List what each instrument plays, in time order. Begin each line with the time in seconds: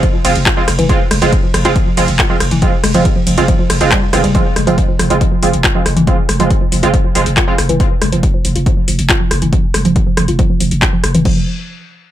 0.03 synth arpeggio sound F3, kick, closed hi-hat
0.14 synth arpeggio sound F3
0.25 808-style bass F1, synth arpeggio sound F3, analog polysynth G#3 C4 F4, open hi-hat, ride
0.35 808-style bass F1, closed hi-hat
0.46 synth arpeggio sound F4, kick, clap, closed hi-hat
0.57 synth arpeggio sound F3, analog polysynth G#3 C4 F4
0.68 808-style bass F1, cross-stick, open hi-hat, ride
0.79 808-style bass F1, synth arpeggio sound E3, closed hi-hat
0.89 analog polysynth G#3 C4 F4, kick, closed hi-hat
1.11 808-style bass F1, synth arpeggio sound G#3, cross-stick, open hi-hat, ride
1.22 808-style bass F1, synth arpeggio sound F3, analog polysynth G#3 C4 F4, closed hi-hat
1.33 kick, closed hi-hat
1.43 synth arpeggio sound F3
1.54 808-style bass F1, synth arpeggio sound F3, cross-stick, open hi-hat, ride
1.65 808-style bass F1, analog polysynth G#3 C4 F4, synth arpeggio sound F4, closed hi-hat
1.76 synth arpeggio sound F3, kick, closed hi-hat
1.87 synth arpeggio sound F3
1.97 808-style bass F1, synth arpeggio sound F3, analog polysynth G#3 C4 F4, open hi-hat, ride
2.08 808-style bass F1, closed hi-hat
2.19 synth arpeggio sound F4, kick, clap, closed hi-hat
2.30 synth arpeggio sound F3, analog polysynth G#3 C4 F4
2.40 808-style bass F1, cross-stick, open hi-hat, ride
2.51 808-style bass F1, synth arpeggio sound E3, closed hi-hat
2.62 synth arpeggio sound F3, analog polysynth G#3 C4 F4, kick, closed hi-hat
2.84 808-style bass F1, synth arpeggio sound G#3, cross-stick, open hi-hat, ride
2.94 808-style bass F1, synth arpeggio sound F3, analog polysynth G#3 C4 F4, closed hi-hat
3.05 kick, closed hi-hat
3.16 synth arpeggio sound F3
3.27 808-style bass F1, synth arpeggio sound F3, open hi-hat, ride
3.38 808-style bass F1, analog polysynth G#3 C4 F4, synth arpeggio sound F4, closed hi-hat
3.48 synth arpeggio sound F3, kick, closed hi-hat
3.59 synth arpeggio sound F3
3.70 808-style bass F1, cross-stick, open hi-hat, ride
3.81 808-style bass F1, analog polysynth G#3 C4 F4, synth arpeggio sound F4, closed hi-hat
3.91 synth arpeggio sound G3, kick, clap, closed hi-hat
4.13 808-style bass F1, synth arpeggio sound E3, analog polysynth G#3 C4 F4, cross-stick, open hi-hat, ride
4.24 808-style bass F1, synth arpeggio sound G3, closed hi-hat
4.35 synth arpeggio sound F3, analog polysynth G#3 C4 F4, kick, closed hi-hat
4.56 808-style bass F1, synth arpeggio sound G#3, cross-stick, open hi-hat
4.67 808-style bass F1, synth arpeggio sound F3, analog polysynth G#3 C4 F4, closed hi-hat
4.78 kick, closed hi-hat
4.89 synth arpeggio sound F3
4.99 808-style bass F1, synth arpeggio sound F3, cross-stick, open hi-hat
5.10 808-style bass F1, analog polysynth G#3 C4 F4, synth arpeggio sound F4, closed hi-hat
5.21 synth arpeggio sound F3, kick, closed hi-hat
5.32 synth arpeggio sound F3
5.43 808-style bass F1, synth arpeggio sound F3, analog polysynth G#3 C4 F4, open hi-hat
5.53 808-style bass F1, closed hi-hat
5.64 synth arpeggio sound F4, kick, clap, closed hi-hat
5.75 synth arpeggio sound F3, analog polysynth G#3 C4 F4
5.86 808-style bass F1, cross-stick, open hi-hat
5.97 808-style bass F1, synth arpeggio sound E3, closed hi-hat
6.07 synth arpeggio sound F3, analog polysynth G#3 C4 F4, kick, closed hi-hat
6.29 808-style bass F1, synth arpeggio sound G#3, cross-stick, open hi-hat
6.40 808-style bass F1, synth arpeggio sound F3, analog polysynth G#3 C4 F4, closed hi-hat
6.50 kick, closed hi-hat
6.61 synth arpeggio sound F3
6.72 808-style bass F1, synth arpeggio sound F3, open hi-hat
6.83 808-style bass F1, analog polysynth G#3 C4 F4, synth arpeggio sound F4, closed hi-hat
6.94 synth arpeggio sound F3, kick, closed hi-hat
7.04 synth arpeggio sound F3
7.15 808-style bass F1, synth arpeggio sound F3, analog polysynth G#3 C4 F4, open hi-hat
7.26 808-style bass F1, closed hi-hat
7.37 synth arpeggio sound F4, kick, clap, closed hi-hat
7.48 synth arpeggio sound F3, analog polysynth G#3 C4 F4
7.58 808-style bass F1, cross-stick, open hi-hat
7.69 808-style bass F1, synth arpeggio sound E3, closed hi-hat
7.80 kick, closed hi-hat
8.01 808-style bass F1, synth arpeggio sound G#3, cross-stick, open hi-hat
8.12 808-style bass F1, synth arpeggio sound F3, closed hi-hat
8.23 kick, closed hi-hat
8.34 synth arpeggio sound F3
8.45 808-style bass F1, synth arpeggio sound F3, open hi-hat
8.56 808-style bass F1, synth arpeggio sound F4, closed hi-hat
8.66 synth arpeggio sound F3, kick, closed hi-hat
8.77 synth arpeggio sound F3
8.88 808-style bass F1, synth arpeggio sound F3, open hi-hat
8.99 808-style bass F1, closed hi-hat
9.09 synth arpeggio sound F4, kick, clap, closed hi-hat
9.20 synth arpeggio sound F3
9.31 808-style bass F1, cross-stick, open hi-hat
9.42 808-style bass F1, synth arpeggio sound E3, closed hi-hat
9.53 synth arpeggio sound F3, kick, closed hi-hat
9.74 808-style bass F1, synth arpeggio sound G#3, cross-stick, open hi-hat
9.85 808-style bass F1, synth arpeggio sound F3, closed hi-hat
9.96 kick, closed hi-hat
10.07 synth arpeggio sound F3
10.17 808-style bass F1, synth arpeggio sound F3, cross-stick, open hi-hat
10.28 808-style bass F1, synth arpeggio sound F4, closed hi-hat
10.39 synth arpeggio sound F3, kick, closed hi-hat
10.50 synth arpeggio sound F3
10.60 808-style bass F1, synth arpeggio sound F3, open hi-hat
10.71 808-style bass F1, closed hi-hat
10.82 synth arpeggio sound F4, kick, clap, closed hi-hat
10.93 synth arpeggio sound F3
11.04 808-style bass F1, cross-stick, open hi-hat
11.15 808-style bass F1, synth arpeggio sound E3, closed hi-hat
11.25 808-style bass F1, synth arpeggio sound F3, kick, crash